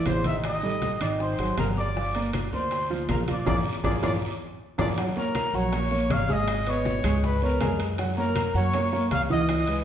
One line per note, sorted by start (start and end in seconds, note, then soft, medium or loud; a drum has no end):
0.00 0.19 E3 medium
0.00 0.19 E4 medium
0.00 0.19 E5 medium
0.05 0.95 A1 medium
0.05 0.25 C5 medium
0.05 0.24 C6 medium
0.05 high bongo soft
0.05 low bongo medium
0.05 high conga medium
0.05 high timbale medium
0.05 low timbale medium
0.05 short guiro medium
0.05 claves medium
0.05 maracas medium
0.24 0.56 D#3 medium
0.24 0.56 D#4 medium
0.24 0.56 D#5 medium
0.24 0.36 E5 medium
0.24 0.32 E6 medium
0.24 high bongo soft
0.24 high conga medium
0.24 high timbale medium
0.24 short guiro medium
0.24 maracas soft
0.43 0.99 D#5 loud
0.43 0.97 D#6 medium
0.43 high bongo medium
0.43 high conga soft
0.43 high timbale medium
0.43 long guiro medium
0.43 claves medium
0.43 maracas medium
0.63 0.94 G3 medium
0.63 0.94 G4 medium
0.63 0.94 A4 medium
0.63 high bongo soft
0.63 high conga soft
0.63 maracas soft
0.82 high bongo medium
0.82 high conga medium
0.82 high timbale medium
0.82 low timbale soft
0.82 short guiro medium
0.82 maracas medium
1.00 1.36 G#1 medium
1.00 1.32 D#3 medium
1.00 1.32 D#4 medium
1.00 1.10 D5 medium
1.00 1.32 D#5 medium
1.00 1.08 D6 medium
1.00 high bongo soft
1.00 high timbale medium
1.00 short guiro medium
1.00 claves medium
1.00 maracas soft
1.20 1.56 C5 medium
1.20 1.56 C6 medium
1.20 high bongo medium
1.20 high conga soft
1.20 long guiro medium
1.20 maracas medium
1.38 1.56 G#1 medium
1.38 1.55 F#3 medium
1.38 1.55 F#4 medium
1.38 1.55 G#4 medium
1.38 high conga soft
1.38 high timbale medium
1.38 maracas soft
1.57 2.46 G1 medium
1.57 1.89 F#3 medium
1.57 1.90 F#4 medium
1.57 1.90 G#4 medium
1.57 1.68 A#4 medium
1.57 1.65 A#5 medium
1.57 high bongo soft
1.57 low bongo medium
1.57 high conga medium
1.57 high timbale medium
1.57 low timbale medium
1.57 short guiro medium
1.57 claves medium
1.57 maracas medium
1.76 2.23 D5 medium
1.76 2.22 D6 medium
1.76 high bongo soft
1.76 short guiro medium
1.76 maracas soft
1.95 2.11 F3 medium
1.95 2.11 F4 medium
1.95 2.12 F5 medium
1.95 high bongo medium
1.95 high conga soft
1.95 long guiro medium
1.95 maracas medium
2.15 2.46 A#3 medium
2.15 2.46 A#4 medium
2.15 2.46 D5 medium
2.15 high bongo soft
2.15 high conga soft
2.15 high timbale medium
2.15 maracas soft
2.33 high bongo medium
2.33 high conga medium
2.33 high timbale medium
2.33 low timbale medium
2.33 short guiro medium
2.33 claves medium
2.33 maracas medium
2.52 3.05 D2 medium
2.52 2.84 A#3 medium
2.52 2.84 A#4 medium
2.52 3.06 C5 medium
2.52 2.84 D5 medium
2.52 3.05 C6 medium
2.52 high bongo soft
2.52 high conga soft
2.52 short guiro medium
2.52 maracas soft
2.71 high bongo medium
2.71 high conga soft
2.71 high timbale medium
2.71 long guiro medium
2.71 maracas medium
2.90 3.21 F3 medium
2.90 3.21 F4 medium
2.90 3.21 F5 medium
2.90 high conga soft
2.90 maracas soft
3.09 3.44 A#1 medium
3.09 3.20 A#4 medium
3.09 3.16 A#5 medium
3.09 high bongo soft
3.09 low bongo medium
3.09 high conga medium
3.09 high timbale medium
3.09 low timbale medium
3.09 short guiro medium
3.09 claves medium
3.09 maracas medium
3.28 3.43 F3 medium
3.28 3.43 F4 medium
3.28 3.47 D5 medium
3.28 3.44 F5 medium
3.28 3.46 D6 medium
3.28 high bongo soft
3.28 high conga medium
3.28 high timbale medium
3.28 short guiro medium
3.28 maracas soft
3.46 3.61 A#1 medium
3.46 3.58 F4 medium
3.46 3.58 G#4 medium
3.46 3.58 A#4 medium
3.46 3.57 D5 medium
3.46 3.59 D6 medium
3.46 low bongo loud
3.46 low conga medium
3.46 high timbale medium
3.46 long guiro loud
3.46 claves medium
3.46 maracas medium
3.84 3.98 A#1 medium
3.84 3.96 F4 medium
3.84 3.96 G#4 medium
3.84 3.96 A#4 medium
3.84 3.94 D5 medium
3.84 3.97 D6 medium
3.84 low bongo medium
3.84 low conga medium
3.84 high timbale medium
3.84 long guiro medium
3.84 claves medium
3.84 maracas medium
4.03 4.17 A#1 medium
4.03 4.15 F4 medium
4.03 4.15 G#4 medium
4.03 4.15 A#4 medium
4.03 4.13 D5 medium
4.03 4.16 D6 loud
4.03 low bongo medium
4.03 low conga medium
4.03 high timbale medium
4.03 long guiro loud
4.03 claves medium
4.03 maracas medium
4.78 4.93 A#1 medium
4.78 4.90 F4 medium
4.78 4.90 G#4 medium
4.78 4.90 A#4 medium
4.78 4.88 D5 medium
4.78 4.91 D6 medium
4.78 low bongo loud
4.78 low conga medium
4.78 high timbale loud
4.78 long guiro medium
4.78 claves medium
4.78 maracas medium
4.97 5.13 F#3 medium
4.97 5.13 F#4 medium
4.97 5.13 F#5 medium
4.97 high bongo medium
4.97 high conga soft
4.97 high timbale medium
4.97 long guiro medium
4.97 maracas medium
5.16 5.47 A#3 medium
5.16 5.47 A#4 medium
5.16 5.58 A#4 medium
5.16 5.48 C#5 medium
5.16 5.56 A#5 medium
5.16 high conga soft
5.35 high bongo medium
5.35 high conga medium
5.35 high timbale medium
5.35 low timbale medium
5.35 short guiro medium
5.35 claves medium
5.35 maracas medium
5.53 6.06 A#1 medium
5.53 5.70 F#3 medium
5.53 5.70 F#4 medium
5.53 6.15 C#5 medium
5.53 5.70 F#5 medium
5.53 6.13 C#6 medium
5.53 high bongo soft
5.53 short guiro medium
5.53 maracas soft
5.72 5.88 A#3 medium
5.72 5.88 A#4 medium
5.72 5.88 C#5 medium
5.72 high bongo medium
5.72 high conga soft
5.72 high timbale medium
5.72 long guiro medium
5.72 maracas medium
5.91 6.22 A#3 medium
5.91 6.22 A#4 medium
5.91 6.23 C#5 medium
5.91 high bongo soft
5.91 high conga soft
6.10 6.98 G#1 medium
6.10 6.34 F5 loud
6.10 6.32 F6 medium
6.10 high bongo soft
6.10 low bongo medium
6.10 high conga medium
6.10 high timbale medium
6.10 low timbale medium
6.10 short guiro medium
6.10 claves medium
6.10 maracas medium
6.29 6.60 G#3 medium
6.29 6.60 G#4 medium
6.29 6.60 G#5 medium
6.29 6.70 D#6 medium
6.29 high bongo soft
6.29 high conga medium
6.29 short guiro medium
6.29 maracas soft
6.33 6.71 D#5 medium
6.48 high bongo medium
6.48 high conga soft
6.48 high timbale medium
6.48 long guiro medium
6.48 claves medium
6.48 maracas medium
6.67 6.98 B3 medium
6.67 6.98 B4 medium
6.67 7.25 C#5 medium
6.67 6.98 D#5 medium
6.67 7.24 C#6 medium
6.67 high conga soft
6.67 high timbale medium
6.67 maracas medium
6.85 high bongo medium
6.85 high conga medium
6.85 low timbale medium
6.85 short guiro medium
6.85 maracas medium
7.04 7.57 C#2 medium
7.04 7.35 G#3 medium
7.04 7.36 G#4 medium
7.04 7.36 G#5 medium
7.04 high bongo soft
7.04 high conga soft
7.04 low conga medium
7.04 high timbale medium
7.04 short guiro medium
7.04 claves medium
7.04 maracas soft
7.23 7.42 B4 medium
7.23 7.41 B5 medium
7.23 high bongo medium
7.23 high conga soft
7.23 low conga medium
7.23 long guiro medium
7.23 maracas medium
7.42 7.58 B3 medium
7.42 7.78 A#4 medium
7.42 7.58 B4 medium
7.42 7.58 C#5 medium
7.42 7.78 A#5 medium
7.42 high bongo soft
7.42 high conga soft
7.60 8.49 F#2 medium
7.60 7.92 G#3 medium
7.60 7.92 G#4 medium
7.60 7.92 G#5 medium
7.60 high bongo soft
7.60 low bongo medium
7.60 high conga medium
7.60 high timbale medium
7.60 low timbale medium
7.60 short guiro medium
7.60 claves medium
7.60 maracas medium
7.80 high bongo soft
7.80 high conga soft
7.80 high timbale medium
7.80 short guiro medium
7.80 maracas soft
7.98 8.14 F#3 medium
7.98 8.14 F#4 medium
7.98 8.14 F#5 medium
7.98 high bongo medium
7.98 high conga soft
7.98 high timbale medium
7.98 long guiro medium
7.98 maracas medium
8.17 8.48 A#3 medium
8.17 8.48 A#4 medium
8.17 8.54 A#4 medium
8.17 8.48 C#5 medium
8.17 8.53 A#5 medium
8.17 high conga soft
8.17 maracas medium
8.35 high bongo medium
8.35 high conga medium
8.35 high timbale medium
8.35 low timbale medium
8.35 short guiro medium
8.35 claves medium
8.35 maracas medium
8.54 9.07 F#2 medium
8.54 8.70 F#3 medium
8.54 8.71 F#4 medium
8.54 9.08 C#5 medium
8.54 8.71 F#5 medium
8.54 9.08 C#6 medium
8.54 high bongo soft
8.54 short guiro medium
8.54 maracas soft
8.73 8.90 A#3 medium
8.73 8.90 A#4 medium
8.73 8.90 C#5 medium
8.73 high bongo medium
8.73 high conga soft
8.73 high timbale medium
8.73 long guiro medium
8.73 maracas medium
8.93 9.24 A#3 medium
8.93 9.24 A#4 medium
8.93 9.24 C#5 medium
8.93 high bongo soft
8.93 high conga soft
8.93 maracas medium
9.11 9.84 C#2 medium
9.11 9.22 F5 loud
9.11 9.18 F6 medium
9.11 high bongo soft
9.11 low bongo medium
9.11 high conga medium
9.11 high timbale medium
9.11 low timbale medium
9.11 short guiro medium
9.11 claves medium
9.11 maracas medium
9.30 9.61 E3 medium
9.30 9.61 E4 medium
9.30 9.84 D#5 loud
9.30 9.61 F#5 medium
9.30 9.83 D#6 medium
9.30 high bongo soft
9.30 high conga medium
9.30 short guiro medium
9.30 maracas soft
9.49 high bongo medium
9.49 high conga soft
9.49 high timbale medium
9.49 long guiro medium
9.49 claves medium
9.49 maracas medium
9.67 9.84 G#3 medium
9.67 9.84 G#4 medium
9.67 9.84 B4 medium
9.67 high timbale medium